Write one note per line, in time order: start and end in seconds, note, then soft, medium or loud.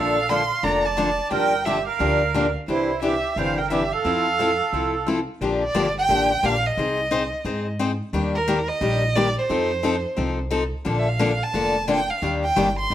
0.00 0.50 A#1 medium
0.00 0.17 D3 medium
0.00 0.17 F3 medium
0.00 0.17 A#3 medium
0.00 0.18 D4 medium
0.00 0.18 A4 medium
0.00 0.27 A4 medium
0.00 0.31 F5 medium
0.29 0.41 D3 medium
0.29 0.41 F3 medium
0.29 0.42 A#3 medium
0.29 0.42 D4 medium
0.29 0.42 A4 medium
0.29 0.64 F5 medium
0.29 0.65 C6 medium
0.62 1.18 F1 medium
0.62 0.85 D3 medium
0.62 0.85 F3 soft
0.62 0.85 A#3 medium
0.62 0.85 D4 medium
0.62 0.85 A4 medium
0.62 0.83 D5 medium
0.62 0.87 A#5 medium
0.84 1.32 D5 medium
0.84 1.32 A5 medium
0.97 1.09 D3 medium
0.97 1.09 F3 medium
0.97 1.09 A#3 medium
0.97 1.09 D4 medium
0.97 1.09 A4 medium
1.30 1.86 G1 medium
1.30 1.52 D3 medium
1.30 1.53 F3 medium
1.30 1.53 A#3 medium
1.30 1.53 D4 medium
1.30 1.53 G4 medium
1.30 1.64 A#4 medium
1.30 1.67 G5 medium
1.65 1.77 D3 medium
1.65 1.77 F3 medium
1.65 1.78 A#3 medium
1.65 1.78 D4 medium
1.65 1.86 G4 medium
1.65 1.78 G4 medium
1.65 1.87 E5 medium
1.86 2.51 A#4 medium
1.86 2.52 F5 medium
1.99 2.55 D2 medium
1.99 2.21 D3 medium
1.99 2.21 F3 medium
1.99 2.21 A#3 medium
1.99 2.21 D4 medium
1.99 2.21 G4 medium
2.34 2.46 D3 medium
2.34 2.46 F3 medium
2.34 2.46 A#3 medium
2.34 2.46 D4 medium
2.34 2.46 G4 medium
2.68 3.23 C2 medium
2.68 2.89 C3 medium
2.68 2.90 E3 medium
2.68 2.90 D4 medium
2.68 3.00 E4 medium
2.68 2.90 G4 medium
2.68 3.00 C5 medium
3.02 3.13 C3 medium
3.02 3.14 E3 medium
3.02 3.14 D4 medium
3.02 3.34 G4 medium
3.02 3.14 G4 medium
3.02 3.39 E5 medium
3.36 3.91 G1 medium
3.36 3.58 C3 medium
3.36 3.58 E3 medium
3.36 3.58 D4 medium
3.36 3.59 G4 medium
3.36 3.58 C5 medium
3.36 3.59 F5 medium
3.58 3.71 A#4 medium
3.58 3.71 G5 medium
3.70 3.82 C3 medium
3.70 3.82 E3 medium
3.70 3.82 D4 medium
3.70 3.91 G4 medium
3.70 3.82 G4 medium
3.70 3.94 E5 medium
3.93 5.07 A4 medium
3.93 5.07 F5 medium
4.04 4.59 F2 medium
4.04 4.26 F3 medium
4.04 4.26 C4 medium
4.04 4.27 E4 medium
4.04 4.27 A4 medium
4.39 4.50 F3 medium
4.39 4.50 C4 medium
4.39 4.51 E4 medium
4.39 4.51 A4 medium
4.73 5.27 C2 medium
4.73 4.94 F3 soft
4.73 4.94 C4 medium
4.73 4.94 E4 medium
4.73 4.95 A4 medium
5.07 5.18 F3 medium
5.07 5.18 C4 medium
5.07 5.19 E4 medium
5.07 5.19 A4 medium
5.41 5.68 A#1 medium
5.41 5.62 D3 medium
5.41 5.62 F3 medium
5.41 5.63 A#3 medium
5.41 5.63 D4 medium
5.41 5.63 G4 medium
5.64 5.95 D5 medium
5.75 6.04 G1 medium
5.75 5.86 D3 medium
5.75 5.86 F3 medium
5.75 5.86 A#3 medium
5.75 5.86 D4 loud
5.75 5.87 G4 medium
5.99 6.47 G5 medium
6.09 6.38 A1 medium
6.09 6.30 D3 medium
6.09 6.30 F3 medium
6.09 6.31 A#3 medium
6.09 6.30 D4 medium
6.09 6.31 G4 medium
6.43 6.72 A#1 medium
6.43 6.54 D3 medium
6.43 6.54 F3 medium
6.43 6.55 A#3 medium
6.43 6.54 D4 medium
6.43 6.55 G4 medium
6.43 6.68 F5 medium
6.67 7.67 D#5 medium
6.77 7.32 C2 medium
6.77 6.98 C4 medium
6.77 6.99 D#4 medium
6.77 6.99 G#4 medium
6.77 6.99 C5 medium
7.11 7.22 C4 medium
7.11 7.22 D#4 medium
7.11 7.23 G#4 medium
7.11 7.23 C5 loud
7.45 7.99 G#2 medium
7.45 7.66 C4 medium
7.45 7.66 D#4 medium
7.45 7.66 G#4 medium
7.45 7.67 C5 medium
7.79 7.90 C4 medium
7.79 7.91 D#4 medium
7.79 7.91 G#4 medium
7.79 7.91 C5 medium
8.13 8.67 D#2 medium
8.13 8.34 D#3 medium
8.13 8.35 G3 medium
8.13 8.35 A#3 medium
8.13 8.35 D4 medium
8.13 8.35 G4 medium
8.35 8.70 A#4 medium
8.48 8.59 D#3 medium
8.48 8.59 G3 medium
8.48 8.59 A#3 medium
8.48 8.59 D4 medium
8.48 8.59 G4 loud
8.68 9.17 D#5 medium
8.81 9.36 A#1 medium
8.81 9.02 D#3 medium
8.81 9.02 G3 medium
8.81 9.03 A#3 medium
8.81 9.03 D4 medium
8.81 9.03 G4 medium
9.16 9.27 D#3 medium
9.16 9.27 G3 medium
9.16 9.27 A#3 medium
9.16 9.27 D4 medium
9.16 9.27 G4 loud
9.16 9.37 D5 medium
9.39 10.36 C5 medium
9.49 10.04 F2 medium
9.49 9.70 F3 medium
9.49 9.71 C4 medium
9.49 9.71 D#4 medium
9.49 9.71 A4 medium
9.83 9.94 F3 medium
9.83 9.95 C4 medium
9.83 9.95 D#4 medium
9.83 9.95 A4 loud
10.17 10.72 C2 medium
10.17 10.38 F3 medium
10.17 10.38 C4 medium
10.17 10.39 D#4 medium
10.17 10.39 A4 medium
10.51 10.62 F3 medium
10.51 10.62 C4 medium
10.51 10.63 D#4 medium
10.51 10.63 A4 medium
10.85 11.40 A#1 medium
10.85 11.06 D3 medium
10.85 11.06 F3 medium
10.85 11.06 A#3 medium
10.85 11.07 D4 medium
10.85 11.07 A4 medium
10.99 11.10 E5 medium
11.09 11.45 F5 medium
11.19 11.31 D3 medium
11.19 11.31 F3 medium
11.19 11.31 A#3 medium
11.19 11.31 D4 medium
11.19 11.31 A4 loud
11.43 11.89 A5 medium
11.53 12.08 F1 medium
11.53 11.75 D3 medium
11.53 11.75 F3 medium
11.53 11.75 A#3 medium
11.53 11.75 D4 medium
11.53 11.75 A4 medium
11.88 11.99 D3 medium
11.88 11.99 F3 medium
11.88 11.99 A#3 medium
11.88 11.99 D4 medium
11.88 11.99 A4 medium
11.88 12.11 G5 loud
12.10 12.22 F5 medium
12.22 12.49 D#2 medium
12.22 12.43 D#3 medium
12.22 12.43 G3 medium
12.22 12.43 A#3 medium
12.22 12.44 D4 medium
12.22 12.44 G4 medium
12.44 12.75 G5 loud
12.56 12.85 G1 medium
12.56 12.67 D#3 medium
12.56 12.67 G3 medium
12.56 12.68 A#3 loud
12.56 12.68 D4 loud
12.56 12.68 G4 loud
12.79 12.94 C6 loud
12.90 12.94 A1 medium
12.90 12.94 D#3 medium
12.90 12.94 G3 medium
12.90 12.94 A#3 medium